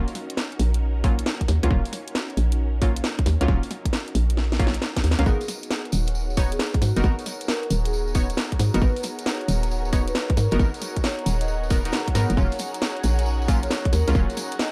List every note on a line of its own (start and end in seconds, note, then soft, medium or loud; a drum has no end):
0.00 5.22 C#4 medium
0.00 5.22 D#4 medium
0.00 5.22 F#4 medium
0.00 5.22 A#4 medium
0.08 open hi-hat medium
0.15 snare soft
0.15 open hi-hat loud
0.30 closed hi-hat medium
0.37 snare loud
0.52 closed hi-hat soft
0.59 1.23 A#1 medium
0.59 open hi-hat loud
0.74 closed hi-hat medium
1.04 1.14 F#3 loud
1.04 1.14 A#3 medium
1.04 1.14 C#4 medium
1.04 1.14 F4 loud
1.04 kick loud
1.04 open hi-hat loud
1.19 closed hi-hat medium
1.26 snare loud
1.41 kick medium
1.41 closed hi-hat medium
1.48 1.59 D#2 medium
1.48 snare medium
1.48 open hi-hat loud
1.63 1.69 C#2 loud
1.63 1.68 F#3 loud
1.63 1.68 A#3 medium
1.63 1.68 C#4 medium
1.63 1.68 F4 loud
1.63 closed hi-hat medium
1.71 1.81 D#1 loud
1.71 1.81 F#3 loud
1.71 1.81 A#3 medium
1.71 1.81 C#4 medium
1.71 1.81 F4 loud
1.71 kick loud
1.85 open hi-hat medium
1.93 snare soft
1.93 open hi-hat loud
2.08 closed hi-hat medium
2.15 snare loud
2.30 closed hi-hat soft
2.37 3.01 A#1 medium
2.37 open hi-hat loud
2.52 closed hi-hat medium
2.82 2.92 F#3 loud
2.82 2.92 A#3 medium
2.82 2.92 C#4 medium
2.82 2.92 F4 loud
2.82 kick loud
2.82 open hi-hat loud
2.96 closed hi-hat medium
3.04 snare loud
3.19 kick loud
3.19 closed hi-hat medium
3.26 3.37 D#2 medium
3.26 snare medium
3.26 open hi-hat loud
3.41 3.46 C#2 loud
3.41 3.46 F#3 loud
3.41 3.46 A#3 medium
3.41 3.46 C#4 medium
3.41 3.46 F4 loud
3.41 closed hi-hat medium
3.48 3.59 D#1 loud
3.48 3.59 F#3 loud
3.48 3.59 A#3 medium
3.48 3.59 C#4 medium
3.48 3.59 F4 loud
3.48 kick loud
3.63 open hi-hat medium
3.71 snare soft
3.71 open hi-hat loud
3.85 kick medium
3.85 closed hi-hat medium
3.93 snare loud
4.08 closed hi-hat soft
4.15 4.79 A#1 medium
4.15 open hi-hat loud
4.30 closed hi-hat medium
4.37 snare medium
4.52 snare medium
4.59 4.70 F#3 medium
4.59 4.70 A#3 medium
4.59 4.70 C#4 medium
4.59 4.70 F4 loud
4.59 kick loud
4.59 open hi-hat loud
4.67 snare medium
4.74 closed hi-hat medium
4.82 snare loud
4.97 kick medium
4.97 snare loud
4.97 closed hi-hat medium
5.04 5.15 D#2 medium
5.04 open hi-hat loud
5.11 snare loud
5.19 5.24 C#2 loud
5.19 5.24 F#3 medium
5.19 5.24 A#3 medium
5.19 5.24 C#4 medium
5.19 5.24 F4 loud
5.19 closed hi-hat medium
5.26 5.37 G#1 loud
5.26 5.37 B3 medium
5.26 12.33 B3 medium
5.26 5.37 D#4 medium
5.26 14.72 D#4 medium
5.26 5.37 F#4 medium
5.26 14.72 F#4 medium
5.26 14.72 G#4 loud
5.26 5.44 G#4 loud
5.26 5.37 A#4 loud
5.26 14.72 A#4 medium
5.26 kick loud
5.26 tambourine medium
5.41 open hi-hat medium
5.41 tambourine soft
5.48 14.72 F#5 medium
5.48 snare soft
5.48 open hi-hat loud
5.48 tambourine medium
5.60 14.72 C#5 medium
5.60 closed hi-hat medium
5.60 tambourine soft
5.71 snare loud
5.71 tambourine medium
5.85 closed hi-hat soft
5.92 6.56 D#1 medium
5.92 open hi-hat loud
5.92 tambourine medium
6.07 closed hi-hat medium
6.07 tambourine soft
6.15 tambourine medium
6.30 tambourine soft
6.37 6.48 B3 loud
6.37 6.48 D#4 medium
6.37 6.48 F#4 medium
6.37 6.48 C#5 loud
6.37 14.72 A#5 medium
6.37 kick loud
6.37 open hi-hat loud
6.37 tambourine medium
6.52 6.75 G#4 medium
6.52 closed hi-hat medium
6.52 tambourine soft
6.59 snare loud
6.59 tambourine soft
6.74 kick loud
6.74 closed hi-hat medium
6.82 6.93 G#2 medium
6.82 7.04 F#4 medium
6.82 snare medium
6.82 open hi-hat loud
6.82 tambourine medium
6.96 7.02 F#1 loud
6.96 7.02 B3 loud
6.96 7.02 D#4 medium
6.96 7.02 F#4 medium
6.96 7.02 A#4 loud
6.96 closed hi-hat medium
6.96 tambourine soft
7.04 7.15 G#1 loud
7.04 7.14 B3 medium
7.04 7.14 D#4 medium
7.04 7.14 F#4 medium
7.04 7.14 A#4 loud
7.04 kick loud
7.04 tambourine medium
7.19 open hi-hat medium
7.19 tambourine soft
7.26 snare soft
7.26 open hi-hat loud
7.26 tambourine medium
7.41 closed hi-hat medium
7.41 tambourine soft
7.48 7.71 A#4 loud
7.48 snare loud
7.48 tambourine soft
7.63 closed hi-hat soft
7.70 8.34 D#1 medium
7.70 open hi-hat loud
7.70 tambourine loud
7.85 8.08 G#4 medium
7.85 closed hi-hat medium
7.85 tambourine soft
7.93 tambourine medium
8.08 tambourine soft
8.15 8.25 B3 medium
8.15 8.25 D#4 medium
8.15 8.25 F#4 medium
8.15 8.25 C#5 loud
8.15 kick loud
8.15 open hi-hat loud
8.15 tambourine loud
8.30 closed hi-hat medium
8.30 tambourine soft
8.37 snare loud
8.37 tambourine soft
8.52 kick medium
8.52 closed hi-hat medium
8.59 8.70 G#2 medium
8.59 snare medium
8.59 open hi-hat loud
8.59 tambourine loud
8.74 8.80 F#1 loud
8.74 8.79 B3 medium
8.74 8.79 D#4 medium
8.74 8.79 F#4 medium
8.74 8.79 A#4 loud
8.74 closed hi-hat medium
8.74 tambourine soft
8.82 8.93 G#1 loud
8.82 8.92 B3 medium
8.82 8.92 D#4 medium
8.82 8.92 F#4 medium
8.82 8.92 A#4 loud
8.82 8.99 B4 loud
8.82 kick loud
8.82 tambourine medium
8.96 open hi-hat medium
8.96 tambourine soft
9.03 snare soft
9.03 open hi-hat loud
9.03 tambourine loud
9.19 closed hi-hat medium
9.19 tambourine soft
9.26 snare loud
9.26 tambourine medium
9.41 closed hi-hat soft
9.48 10.12 D#1 loud
9.48 open hi-hat loud
9.48 tambourine medium
9.63 closed hi-hat medium
9.63 tambourine soft
9.71 tambourine medium
9.85 tambourine soft
9.93 10.03 B3 loud
9.93 10.03 D#4 medium
9.93 10.03 F#4 medium
9.93 10.03 C#5 loud
9.93 kick loud
9.93 open hi-hat loud
9.93 tambourine medium
10.08 10.30 B4 medium
10.08 closed hi-hat medium
10.08 tambourine soft
10.15 snare loud
10.15 tambourine medium
10.30 kick loud
10.30 closed hi-hat medium
10.37 10.48 G#2 medium
10.37 10.60 A#4 medium
10.37 snare medium
10.37 open hi-hat loud
10.37 tambourine loud
10.51 10.57 F#1 loud
10.51 10.57 B3 medium
10.51 10.57 D#4 medium
10.51 10.57 F#4 medium
10.51 10.57 A#4 loud
10.51 closed hi-hat medium
10.51 tambourine soft
10.59 10.70 G#1 loud
10.59 10.70 B3 medium
10.59 10.70 D#4 medium
10.59 10.70 F#4 medium
10.59 10.70 A#4 loud
10.59 kick loud
10.59 tambourine medium
10.74 open hi-hat medium
10.74 tambourine soft
10.81 snare soft
10.81 open hi-hat loud
10.81 tambourine loud
10.96 kick medium
10.96 closed hi-hat medium
10.96 tambourine soft
11.03 11.27 C#5 loud
11.03 snare loud
11.03 tambourine medium
11.19 closed hi-hat soft
11.26 11.90 D#1 medium
11.26 open hi-hat loud
11.26 tambourine loud
11.41 11.63 D#5 medium
11.41 closed hi-hat medium
11.41 tambourine soft
11.48 tambourine medium
11.63 tambourine soft
11.70 11.82 B3 medium
11.70 11.82 D#4 medium
11.70 11.82 F#4 medium
11.70 11.82 A#4 medium
11.70 kick loud
11.70 open hi-hat loud
11.70 tambourine medium
11.85 11.95 B3 medium
11.85 11.95 D#4 medium
11.85 11.95 F#4 medium
11.85 11.95 A#4 medium
11.85 closed hi-hat medium
11.85 tambourine soft
11.92 snare loud
11.92 tambourine soft
12.08 kick medium
12.08 closed hi-hat medium
12.15 12.26 G#2 medium
12.15 12.31 B3 loud
12.15 12.31 D#4 medium
12.15 12.31 F#4 medium
12.15 12.31 A#4 loud
12.15 snare medium
12.15 open hi-hat loud
12.15 tambourine loud
12.30 12.35 F#1 loud
12.30 closed hi-hat medium
12.30 tambourine soft
12.37 12.48 D#1 loud
12.37 12.48 F#3 medium
12.37 12.48 A#3 medium
12.37 12.48 C#4 medium
12.37 14.72 C#4 medium
12.37 12.48 F4 loud
12.37 12.55 C#5 loud
12.37 kick loud
12.37 tambourine medium
12.52 open hi-hat medium
12.52 tambourine soft
12.59 snare soft
12.59 open hi-hat loud
12.59 tambourine medium
12.74 closed hi-hat medium
12.74 tambourine soft
12.82 snare loud
12.82 tambourine medium
12.97 closed hi-hat soft
13.03 13.67 A#1 medium
13.03 open hi-hat loud
13.03 tambourine loud
13.19 closed hi-hat medium
13.19 tambourine soft
13.26 tambourine medium
13.42 tambourine soft
13.48 13.59 F#3 loud
13.48 13.59 A#3 medium
13.48 13.59 C#4 medium
13.48 13.59 F4 loud
13.48 kick loud
13.48 open hi-hat medium
13.48 tambourine loud
13.63 13.86 C#5 loud
13.63 closed hi-hat medium
13.63 tambourine soft
13.71 snare loud
13.71 tambourine medium
13.85 kick loud
13.85 closed hi-hat medium
13.93 14.04 D#2 medium
13.93 14.15 A#4 medium
13.93 snare medium
13.93 open hi-hat loud
13.93 tambourine medium
14.07 14.13 C#2 loud
14.07 14.13 F#3 medium
14.07 14.13 A#3 medium
14.07 14.13 C#4 medium
14.07 14.13 F4 loud
14.07 closed hi-hat medium
14.07 tambourine soft
14.15 14.26 D#1 loud
14.15 14.25 F#3 medium
14.15 14.25 A#3 medium
14.15 14.25 C#4 medium
14.15 14.25 F4 loud
14.15 kick loud
14.15 tambourine soft
14.29 open hi-hat medium
14.29 tambourine soft
14.37 snare soft
14.37 open hi-hat loud
14.37 tambourine loud
14.51 closed hi-hat medium
14.51 tambourine soft
14.59 14.72 D#5 medium
14.59 snare loud
14.59 tambourine soft